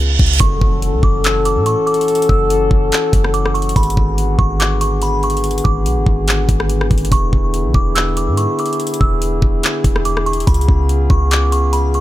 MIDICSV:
0, 0, Header, 1, 7, 480
1, 0, Start_track
1, 0, Key_signature, 3, "minor"
1, 0, Tempo, 419580
1, 461, Time_signature, 4, 2, 24, 8
1, 13733, End_track
2, 0, Start_track
2, 0, Title_t, "Synth bell"
2, 0, Program_c, 0, 98
2, 460, Note_on_c, 0, 85, 107
2, 1138, Note_off_c, 0, 85, 0
2, 1182, Note_on_c, 0, 86, 75
2, 1410, Note_off_c, 0, 86, 0
2, 1428, Note_on_c, 0, 88, 81
2, 1653, Note_off_c, 0, 88, 0
2, 1665, Note_on_c, 0, 86, 78
2, 1891, Note_off_c, 0, 86, 0
2, 1902, Note_on_c, 0, 85, 85
2, 2130, Note_off_c, 0, 85, 0
2, 2135, Note_on_c, 0, 86, 90
2, 2366, Note_off_c, 0, 86, 0
2, 2621, Note_on_c, 0, 88, 88
2, 2849, Note_off_c, 0, 88, 0
2, 3818, Note_on_c, 0, 86, 78
2, 4047, Note_off_c, 0, 86, 0
2, 4054, Note_on_c, 0, 85, 91
2, 4286, Note_off_c, 0, 85, 0
2, 4305, Note_on_c, 0, 83, 91
2, 4980, Note_off_c, 0, 83, 0
2, 5018, Note_on_c, 0, 85, 75
2, 5247, Note_off_c, 0, 85, 0
2, 5258, Note_on_c, 0, 86, 86
2, 5488, Note_off_c, 0, 86, 0
2, 5502, Note_on_c, 0, 85, 77
2, 5730, Note_off_c, 0, 85, 0
2, 5750, Note_on_c, 0, 83, 95
2, 5974, Note_off_c, 0, 83, 0
2, 5991, Note_on_c, 0, 85, 86
2, 6215, Note_off_c, 0, 85, 0
2, 6456, Note_on_c, 0, 86, 73
2, 6687, Note_off_c, 0, 86, 0
2, 8149, Note_on_c, 0, 85, 100
2, 8822, Note_off_c, 0, 85, 0
2, 8863, Note_on_c, 0, 86, 74
2, 9090, Note_off_c, 0, 86, 0
2, 9098, Note_on_c, 0, 88, 86
2, 9327, Note_off_c, 0, 88, 0
2, 9348, Note_on_c, 0, 86, 80
2, 9573, Note_off_c, 0, 86, 0
2, 9581, Note_on_c, 0, 85, 84
2, 9809, Note_off_c, 0, 85, 0
2, 9833, Note_on_c, 0, 86, 85
2, 10055, Note_off_c, 0, 86, 0
2, 10303, Note_on_c, 0, 88, 82
2, 10530, Note_off_c, 0, 88, 0
2, 11501, Note_on_c, 0, 86, 78
2, 11729, Note_off_c, 0, 86, 0
2, 11740, Note_on_c, 0, 85, 86
2, 11969, Note_off_c, 0, 85, 0
2, 11978, Note_on_c, 0, 83, 90
2, 12657, Note_off_c, 0, 83, 0
2, 12702, Note_on_c, 0, 85, 77
2, 12930, Note_off_c, 0, 85, 0
2, 12943, Note_on_c, 0, 86, 97
2, 13170, Note_off_c, 0, 86, 0
2, 13183, Note_on_c, 0, 85, 78
2, 13410, Note_off_c, 0, 85, 0
2, 13417, Note_on_c, 0, 83, 77
2, 13647, Note_off_c, 0, 83, 0
2, 13670, Note_on_c, 0, 85, 84
2, 13733, Note_off_c, 0, 85, 0
2, 13733, End_track
3, 0, Start_track
3, 0, Title_t, "Brass ensemble"
3, 0, Program_c, 1, 61
3, 0, Note_on_c, 1, 49, 77
3, 0, Note_on_c, 1, 59, 72
3, 0, Note_on_c, 1, 65, 66
3, 0, Note_on_c, 1, 68, 80
3, 266, Note_off_c, 1, 49, 0
3, 266, Note_off_c, 1, 59, 0
3, 266, Note_off_c, 1, 65, 0
3, 266, Note_off_c, 1, 68, 0
3, 461, Note_on_c, 1, 61, 69
3, 461, Note_on_c, 1, 69, 83
3, 462, Note_on_c, 1, 52, 75
3, 462, Note_on_c, 1, 66, 70
3, 4263, Note_off_c, 1, 52, 0
3, 4263, Note_off_c, 1, 61, 0
3, 4263, Note_off_c, 1, 69, 0
3, 4301, Note_on_c, 1, 59, 69
3, 4301, Note_on_c, 1, 68, 82
3, 4302, Note_on_c, 1, 50, 78
3, 8096, Note_off_c, 1, 66, 0
3, 8103, Note_off_c, 1, 68, 0
3, 8141, Note_on_c, 1, 64, 67
3, 8141, Note_on_c, 1, 68, 84
3, 11936, Note_off_c, 1, 50, 0
3, 11936, Note_off_c, 1, 59, 0
3, 11943, Note_off_c, 1, 64, 0
3, 11981, Note_on_c, 1, 59, 73
3, 11982, Note_on_c, 1, 49, 75
3, 11982, Note_on_c, 1, 65, 68
3, 13733, Note_off_c, 1, 49, 0
3, 13733, Note_off_c, 1, 59, 0
3, 13733, Note_off_c, 1, 65, 0
3, 13733, Note_off_c, 1, 68, 0
3, 13733, End_track
4, 0, Start_track
4, 0, Title_t, "808-style bass"
4, 0, Program_c, 2, 38
4, 0, Note_on_c, 2, 37, 95
4, 202, Note_off_c, 2, 37, 0
4, 223, Note_on_c, 2, 37, 105
4, 452, Note_off_c, 2, 37, 0
4, 461, Note_on_c, 2, 30, 110
4, 692, Note_off_c, 2, 30, 0
4, 703, Note_on_c, 2, 30, 115
4, 1062, Note_on_c, 2, 37, 101
4, 1079, Note_off_c, 2, 30, 0
4, 1171, Note_off_c, 2, 37, 0
4, 1178, Note_on_c, 2, 30, 106
4, 1780, Note_on_c, 2, 45, 93
4, 1797, Note_off_c, 2, 30, 0
4, 2009, Note_off_c, 2, 45, 0
4, 2624, Note_on_c, 2, 30, 109
4, 3084, Note_off_c, 2, 30, 0
4, 3099, Note_on_c, 2, 30, 103
4, 3331, Note_off_c, 2, 30, 0
4, 3581, Note_on_c, 2, 30, 102
4, 4273, Note_off_c, 2, 30, 0
4, 4302, Note_on_c, 2, 32, 110
4, 4532, Note_off_c, 2, 32, 0
4, 4544, Note_on_c, 2, 32, 114
4, 5004, Note_off_c, 2, 32, 0
4, 5018, Note_on_c, 2, 32, 105
4, 6414, Note_off_c, 2, 32, 0
4, 6463, Note_on_c, 2, 32, 116
4, 6701, Note_on_c, 2, 35, 104
4, 6718, Note_off_c, 2, 32, 0
4, 6822, Note_on_c, 2, 32, 97
4, 6839, Note_off_c, 2, 35, 0
4, 6931, Note_off_c, 2, 32, 0
4, 6938, Note_on_c, 2, 32, 103
4, 7401, Note_off_c, 2, 32, 0
4, 7421, Note_on_c, 2, 32, 99
4, 7882, Note_off_c, 2, 32, 0
4, 7902, Note_on_c, 2, 32, 114
4, 8132, Note_off_c, 2, 32, 0
4, 8142, Note_on_c, 2, 28, 111
4, 8372, Note_off_c, 2, 28, 0
4, 8383, Note_on_c, 2, 28, 116
4, 8743, Note_on_c, 2, 35, 102
4, 8760, Note_off_c, 2, 28, 0
4, 8853, Note_off_c, 2, 35, 0
4, 8860, Note_on_c, 2, 28, 108
4, 9463, Note_on_c, 2, 44, 101
4, 9480, Note_off_c, 2, 28, 0
4, 9690, Note_off_c, 2, 44, 0
4, 10305, Note_on_c, 2, 28, 109
4, 10764, Note_off_c, 2, 28, 0
4, 10778, Note_on_c, 2, 28, 104
4, 11010, Note_off_c, 2, 28, 0
4, 11261, Note_on_c, 2, 28, 99
4, 11953, Note_off_c, 2, 28, 0
4, 11982, Note_on_c, 2, 37, 110
4, 12212, Note_off_c, 2, 37, 0
4, 12224, Note_on_c, 2, 37, 109
4, 12683, Note_off_c, 2, 37, 0
4, 12698, Note_on_c, 2, 37, 104
4, 13733, Note_off_c, 2, 37, 0
4, 13733, End_track
5, 0, Start_track
5, 0, Title_t, "Impact"
5, 0, Program_c, 3, 103
5, 461, Note_on_c, 3, 60, 87
5, 2381, Note_off_c, 3, 60, 0
5, 13733, End_track
6, 0, Start_track
6, 0, Title_t, "Reverse cymbal"
6, 0, Program_c, 4, 119
6, 0, Note_on_c, 4, 60, 84
6, 461, Note_off_c, 4, 60, 0
6, 13733, End_track
7, 0, Start_track
7, 0, Title_t, "Drums"
7, 221, Note_on_c, 9, 42, 40
7, 222, Note_on_c, 9, 36, 100
7, 302, Note_off_c, 9, 42, 0
7, 302, Note_on_c, 9, 42, 56
7, 337, Note_off_c, 9, 36, 0
7, 381, Note_off_c, 9, 42, 0
7, 381, Note_on_c, 9, 42, 73
7, 461, Note_on_c, 9, 36, 116
7, 462, Note_off_c, 9, 42, 0
7, 462, Note_on_c, 9, 42, 85
7, 576, Note_off_c, 9, 36, 0
7, 576, Note_off_c, 9, 42, 0
7, 703, Note_on_c, 9, 36, 90
7, 818, Note_off_c, 9, 36, 0
7, 942, Note_on_c, 9, 42, 70
7, 1056, Note_off_c, 9, 42, 0
7, 1178, Note_on_c, 9, 36, 96
7, 1292, Note_off_c, 9, 36, 0
7, 1420, Note_on_c, 9, 42, 87
7, 1434, Note_on_c, 9, 39, 115
7, 1534, Note_off_c, 9, 42, 0
7, 1549, Note_off_c, 9, 39, 0
7, 1663, Note_on_c, 9, 42, 78
7, 1778, Note_off_c, 9, 42, 0
7, 1898, Note_on_c, 9, 42, 75
7, 2013, Note_off_c, 9, 42, 0
7, 2141, Note_on_c, 9, 42, 42
7, 2221, Note_off_c, 9, 42, 0
7, 2221, Note_on_c, 9, 42, 48
7, 2301, Note_off_c, 9, 42, 0
7, 2301, Note_on_c, 9, 42, 59
7, 2381, Note_off_c, 9, 42, 0
7, 2381, Note_on_c, 9, 42, 57
7, 2461, Note_off_c, 9, 42, 0
7, 2461, Note_on_c, 9, 42, 65
7, 2541, Note_off_c, 9, 42, 0
7, 2541, Note_on_c, 9, 42, 72
7, 2624, Note_on_c, 9, 36, 84
7, 2656, Note_off_c, 9, 42, 0
7, 2738, Note_off_c, 9, 36, 0
7, 2864, Note_on_c, 9, 42, 71
7, 2978, Note_off_c, 9, 42, 0
7, 3099, Note_on_c, 9, 36, 96
7, 3213, Note_off_c, 9, 36, 0
7, 3340, Note_on_c, 9, 42, 87
7, 3355, Note_on_c, 9, 39, 118
7, 3455, Note_off_c, 9, 42, 0
7, 3470, Note_off_c, 9, 39, 0
7, 3582, Note_on_c, 9, 36, 97
7, 3583, Note_on_c, 9, 42, 75
7, 3696, Note_off_c, 9, 36, 0
7, 3698, Note_off_c, 9, 42, 0
7, 3711, Note_on_c, 9, 37, 107
7, 3820, Note_on_c, 9, 42, 71
7, 3826, Note_off_c, 9, 37, 0
7, 3934, Note_off_c, 9, 42, 0
7, 3953, Note_on_c, 9, 37, 98
7, 4063, Note_on_c, 9, 42, 43
7, 4068, Note_off_c, 9, 37, 0
7, 4143, Note_off_c, 9, 42, 0
7, 4143, Note_on_c, 9, 42, 50
7, 4223, Note_off_c, 9, 42, 0
7, 4223, Note_on_c, 9, 42, 57
7, 4302, Note_off_c, 9, 42, 0
7, 4302, Note_on_c, 9, 36, 115
7, 4302, Note_on_c, 9, 42, 58
7, 4382, Note_off_c, 9, 42, 0
7, 4382, Note_on_c, 9, 42, 66
7, 4416, Note_off_c, 9, 36, 0
7, 4462, Note_off_c, 9, 42, 0
7, 4462, Note_on_c, 9, 42, 67
7, 4544, Note_on_c, 9, 36, 91
7, 4577, Note_off_c, 9, 42, 0
7, 4658, Note_off_c, 9, 36, 0
7, 4782, Note_on_c, 9, 42, 72
7, 4897, Note_off_c, 9, 42, 0
7, 5019, Note_on_c, 9, 36, 98
7, 5133, Note_off_c, 9, 36, 0
7, 5260, Note_on_c, 9, 42, 84
7, 5275, Note_on_c, 9, 39, 118
7, 5375, Note_off_c, 9, 42, 0
7, 5389, Note_off_c, 9, 39, 0
7, 5503, Note_on_c, 9, 42, 77
7, 5617, Note_off_c, 9, 42, 0
7, 5738, Note_on_c, 9, 42, 72
7, 5853, Note_off_c, 9, 42, 0
7, 5982, Note_on_c, 9, 42, 40
7, 6062, Note_off_c, 9, 42, 0
7, 6062, Note_on_c, 9, 42, 49
7, 6141, Note_off_c, 9, 42, 0
7, 6141, Note_on_c, 9, 42, 58
7, 6221, Note_off_c, 9, 42, 0
7, 6221, Note_on_c, 9, 42, 61
7, 6301, Note_off_c, 9, 42, 0
7, 6301, Note_on_c, 9, 42, 61
7, 6381, Note_off_c, 9, 42, 0
7, 6381, Note_on_c, 9, 42, 71
7, 6463, Note_on_c, 9, 36, 89
7, 6496, Note_off_c, 9, 42, 0
7, 6578, Note_off_c, 9, 36, 0
7, 6703, Note_on_c, 9, 42, 70
7, 6817, Note_off_c, 9, 42, 0
7, 6938, Note_on_c, 9, 36, 97
7, 7053, Note_off_c, 9, 36, 0
7, 7180, Note_on_c, 9, 42, 90
7, 7194, Note_on_c, 9, 39, 119
7, 7294, Note_off_c, 9, 42, 0
7, 7309, Note_off_c, 9, 39, 0
7, 7421, Note_on_c, 9, 36, 98
7, 7423, Note_on_c, 9, 42, 80
7, 7536, Note_off_c, 9, 36, 0
7, 7537, Note_off_c, 9, 42, 0
7, 7550, Note_on_c, 9, 37, 110
7, 7659, Note_on_c, 9, 42, 71
7, 7665, Note_off_c, 9, 37, 0
7, 7773, Note_off_c, 9, 42, 0
7, 7792, Note_on_c, 9, 37, 96
7, 7902, Note_on_c, 9, 36, 104
7, 7902, Note_on_c, 9, 42, 42
7, 7907, Note_off_c, 9, 37, 0
7, 7981, Note_off_c, 9, 42, 0
7, 7981, Note_on_c, 9, 42, 56
7, 8017, Note_off_c, 9, 36, 0
7, 8062, Note_off_c, 9, 42, 0
7, 8062, Note_on_c, 9, 42, 77
7, 8142, Note_off_c, 9, 42, 0
7, 8142, Note_on_c, 9, 36, 112
7, 8142, Note_on_c, 9, 42, 78
7, 8256, Note_off_c, 9, 36, 0
7, 8256, Note_off_c, 9, 42, 0
7, 8384, Note_on_c, 9, 36, 88
7, 8498, Note_off_c, 9, 36, 0
7, 8623, Note_on_c, 9, 42, 72
7, 8737, Note_off_c, 9, 42, 0
7, 8859, Note_on_c, 9, 36, 100
7, 8973, Note_off_c, 9, 36, 0
7, 9101, Note_on_c, 9, 42, 84
7, 9116, Note_on_c, 9, 39, 113
7, 9215, Note_off_c, 9, 42, 0
7, 9230, Note_off_c, 9, 39, 0
7, 9344, Note_on_c, 9, 42, 82
7, 9458, Note_off_c, 9, 42, 0
7, 9580, Note_on_c, 9, 42, 71
7, 9694, Note_off_c, 9, 42, 0
7, 9824, Note_on_c, 9, 42, 42
7, 9903, Note_off_c, 9, 42, 0
7, 9903, Note_on_c, 9, 42, 49
7, 9984, Note_off_c, 9, 42, 0
7, 9984, Note_on_c, 9, 42, 58
7, 10063, Note_off_c, 9, 42, 0
7, 10063, Note_on_c, 9, 42, 57
7, 10144, Note_off_c, 9, 42, 0
7, 10144, Note_on_c, 9, 42, 66
7, 10224, Note_off_c, 9, 42, 0
7, 10224, Note_on_c, 9, 42, 71
7, 10305, Note_on_c, 9, 36, 93
7, 10338, Note_off_c, 9, 42, 0
7, 10419, Note_off_c, 9, 36, 0
7, 10544, Note_on_c, 9, 42, 70
7, 10658, Note_off_c, 9, 42, 0
7, 10779, Note_on_c, 9, 36, 95
7, 10894, Note_off_c, 9, 36, 0
7, 11021, Note_on_c, 9, 42, 86
7, 11036, Note_on_c, 9, 39, 123
7, 11135, Note_off_c, 9, 42, 0
7, 11150, Note_off_c, 9, 39, 0
7, 11261, Note_on_c, 9, 36, 97
7, 11263, Note_on_c, 9, 42, 79
7, 11376, Note_off_c, 9, 36, 0
7, 11378, Note_off_c, 9, 42, 0
7, 11391, Note_on_c, 9, 37, 105
7, 11499, Note_on_c, 9, 42, 72
7, 11506, Note_off_c, 9, 37, 0
7, 11614, Note_off_c, 9, 42, 0
7, 11633, Note_on_c, 9, 37, 97
7, 11742, Note_on_c, 9, 42, 41
7, 11748, Note_off_c, 9, 37, 0
7, 11821, Note_off_c, 9, 42, 0
7, 11821, Note_on_c, 9, 42, 48
7, 11901, Note_off_c, 9, 42, 0
7, 11901, Note_on_c, 9, 42, 59
7, 11981, Note_off_c, 9, 42, 0
7, 11981, Note_on_c, 9, 36, 112
7, 11981, Note_on_c, 9, 42, 60
7, 12062, Note_off_c, 9, 42, 0
7, 12062, Note_on_c, 9, 42, 64
7, 12096, Note_off_c, 9, 36, 0
7, 12141, Note_off_c, 9, 42, 0
7, 12141, Note_on_c, 9, 42, 69
7, 12224, Note_on_c, 9, 36, 90
7, 12256, Note_off_c, 9, 42, 0
7, 12338, Note_off_c, 9, 36, 0
7, 12461, Note_on_c, 9, 42, 71
7, 12576, Note_off_c, 9, 42, 0
7, 12698, Note_on_c, 9, 36, 94
7, 12813, Note_off_c, 9, 36, 0
7, 12939, Note_on_c, 9, 42, 89
7, 12954, Note_on_c, 9, 39, 118
7, 13053, Note_off_c, 9, 42, 0
7, 13068, Note_off_c, 9, 39, 0
7, 13182, Note_on_c, 9, 42, 78
7, 13296, Note_off_c, 9, 42, 0
7, 13418, Note_on_c, 9, 42, 71
7, 13532, Note_off_c, 9, 42, 0
7, 13661, Note_on_c, 9, 42, 42
7, 13733, Note_off_c, 9, 42, 0
7, 13733, End_track
0, 0, End_of_file